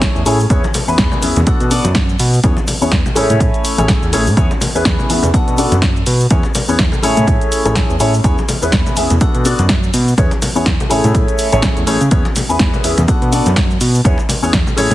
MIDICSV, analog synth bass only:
0, 0, Header, 1, 2, 480
1, 0, Start_track
1, 0, Tempo, 483871
1, 498, Time_signature, 4, 2, 24, 8
1, 14825, End_track
2, 0, Start_track
2, 0, Title_t, "Analog synth bass"
2, 0, Program_c, 0, 38
2, 0, Note_on_c, 0, 33, 103
2, 102, Note_off_c, 0, 33, 0
2, 155, Note_on_c, 0, 40, 90
2, 239, Note_off_c, 0, 40, 0
2, 257, Note_on_c, 0, 45, 81
2, 458, Note_off_c, 0, 45, 0
2, 497, Note_on_c, 0, 40, 95
2, 607, Note_off_c, 0, 40, 0
2, 874, Note_on_c, 0, 40, 45
2, 957, Note_off_c, 0, 40, 0
2, 977, Note_on_c, 0, 40, 92
2, 1087, Note_off_c, 0, 40, 0
2, 1219, Note_on_c, 0, 40, 44
2, 1327, Note_off_c, 0, 40, 0
2, 1355, Note_on_c, 0, 40, 87
2, 1439, Note_off_c, 0, 40, 0
2, 1458, Note_on_c, 0, 47, 44
2, 1566, Note_off_c, 0, 47, 0
2, 1594, Note_on_c, 0, 47, 83
2, 1782, Note_off_c, 0, 47, 0
2, 1835, Note_on_c, 0, 42, 95
2, 2147, Note_off_c, 0, 42, 0
2, 2179, Note_on_c, 0, 47, 98
2, 2379, Note_off_c, 0, 47, 0
2, 2417, Note_on_c, 0, 40, 95
2, 2527, Note_off_c, 0, 40, 0
2, 2792, Note_on_c, 0, 40, 46
2, 2877, Note_off_c, 0, 40, 0
2, 2896, Note_on_c, 0, 40, 96
2, 3007, Note_off_c, 0, 40, 0
2, 3136, Note_on_c, 0, 45, 45
2, 3245, Note_off_c, 0, 45, 0
2, 3271, Note_on_c, 0, 45, 84
2, 3357, Note_off_c, 0, 45, 0
2, 3376, Note_on_c, 0, 45, 79
2, 3487, Note_off_c, 0, 45, 0
2, 3750, Note_on_c, 0, 33, 97
2, 3940, Note_off_c, 0, 33, 0
2, 3991, Note_on_c, 0, 40, 103
2, 4095, Note_on_c, 0, 33, 87
2, 4110, Note_off_c, 0, 40, 0
2, 4231, Note_on_c, 0, 45, 100
2, 4246, Note_off_c, 0, 33, 0
2, 4317, Note_off_c, 0, 45, 0
2, 4336, Note_on_c, 0, 40, 96
2, 4447, Note_off_c, 0, 40, 0
2, 4710, Note_on_c, 0, 40, 45
2, 4795, Note_off_c, 0, 40, 0
2, 4816, Note_on_c, 0, 40, 96
2, 4927, Note_off_c, 0, 40, 0
2, 5056, Note_on_c, 0, 40, 43
2, 5165, Note_off_c, 0, 40, 0
2, 5191, Note_on_c, 0, 40, 84
2, 5277, Note_off_c, 0, 40, 0
2, 5296, Note_on_c, 0, 47, 45
2, 5405, Note_off_c, 0, 47, 0
2, 5431, Note_on_c, 0, 47, 82
2, 5621, Note_off_c, 0, 47, 0
2, 5671, Note_on_c, 0, 42, 93
2, 5985, Note_off_c, 0, 42, 0
2, 6018, Note_on_c, 0, 47, 96
2, 6218, Note_off_c, 0, 47, 0
2, 6257, Note_on_c, 0, 40, 101
2, 6367, Note_off_c, 0, 40, 0
2, 6632, Note_on_c, 0, 40, 47
2, 6716, Note_off_c, 0, 40, 0
2, 6737, Note_on_c, 0, 40, 91
2, 6847, Note_off_c, 0, 40, 0
2, 6976, Note_on_c, 0, 45, 42
2, 7085, Note_off_c, 0, 45, 0
2, 7113, Note_on_c, 0, 45, 85
2, 7198, Note_off_c, 0, 45, 0
2, 7216, Note_on_c, 0, 45, 84
2, 7327, Note_off_c, 0, 45, 0
2, 7592, Note_on_c, 0, 33, 98
2, 7781, Note_off_c, 0, 33, 0
2, 7832, Note_on_c, 0, 40, 86
2, 7917, Note_off_c, 0, 40, 0
2, 7936, Note_on_c, 0, 45, 87
2, 8137, Note_off_c, 0, 45, 0
2, 8176, Note_on_c, 0, 40, 102
2, 8287, Note_off_c, 0, 40, 0
2, 8554, Note_on_c, 0, 40, 45
2, 8637, Note_off_c, 0, 40, 0
2, 8657, Note_on_c, 0, 40, 94
2, 8767, Note_off_c, 0, 40, 0
2, 8899, Note_on_c, 0, 40, 44
2, 9007, Note_off_c, 0, 40, 0
2, 9034, Note_on_c, 0, 40, 86
2, 9118, Note_off_c, 0, 40, 0
2, 9136, Note_on_c, 0, 47, 44
2, 9245, Note_off_c, 0, 47, 0
2, 9273, Note_on_c, 0, 47, 87
2, 9462, Note_off_c, 0, 47, 0
2, 9513, Note_on_c, 0, 42, 95
2, 9826, Note_off_c, 0, 42, 0
2, 9858, Note_on_c, 0, 47, 97
2, 10058, Note_off_c, 0, 47, 0
2, 10097, Note_on_c, 0, 40, 93
2, 10207, Note_off_c, 0, 40, 0
2, 10475, Note_on_c, 0, 40, 46
2, 10558, Note_off_c, 0, 40, 0
2, 10576, Note_on_c, 0, 40, 93
2, 10687, Note_off_c, 0, 40, 0
2, 10817, Note_on_c, 0, 45, 45
2, 10926, Note_off_c, 0, 45, 0
2, 10953, Note_on_c, 0, 45, 88
2, 11038, Note_off_c, 0, 45, 0
2, 11057, Note_on_c, 0, 45, 84
2, 11167, Note_off_c, 0, 45, 0
2, 11435, Note_on_c, 0, 33, 101
2, 11623, Note_off_c, 0, 33, 0
2, 11674, Note_on_c, 0, 40, 82
2, 11758, Note_off_c, 0, 40, 0
2, 11777, Note_on_c, 0, 33, 81
2, 11887, Note_off_c, 0, 33, 0
2, 11913, Note_on_c, 0, 49, 82
2, 11998, Note_off_c, 0, 49, 0
2, 12018, Note_on_c, 0, 40, 95
2, 12128, Note_off_c, 0, 40, 0
2, 12393, Note_on_c, 0, 40, 46
2, 12477, Note_off_c, 0, 40, 0
2, 12498, Note_on_c, 0, 40, 92
2, 12608, Note_off_c, 0, 40, 0
2, 12737, Note_on_c, 0, 40, 44
2, 12846, Note_off_c, 0, 40, 0
2, 12872, Note_on_c, 0, 40, 83
2, 12957, Note_off_c, 0, 40, 0
2, 12979, Note_on_c, 0, 47, 45
2, 13087, Note_off_c, 0, 47, 0
2, 13113, Note_on_c, 0, 47, 86
2, 13302, Note_off_c, 0, 47, 0
2, 13353, Note_on_c, 0, 42, 99
2, 13666, Note_off_c, 0, 42, 0
2, 13697, Note_on_c, 0, 47, 97
2, 13898, Note_off_c, 0, 47, 0
2, 13937, Note_on_c, 0, 40, 98
2, 14047, Note_off_c, 0, 40, 0
2, 14313, Note_on_c, 0, 40, 46
2, 14397, Note_off_c, 0, 40, 0
2, 14418, Note_on_c, 0, 40, 91
2, 14527, Note_off_c, 0, 40, 0
2, 14657, Note_on_c, 0, 45, 44
2, 14766, Note_off_c, 0, 45, 0
2, 14793, Note_on_c, 0, 45, 86
2, 14825, Note_off_c, 0, 45, 0
2, 14825, End_track
0, 0, End_of_file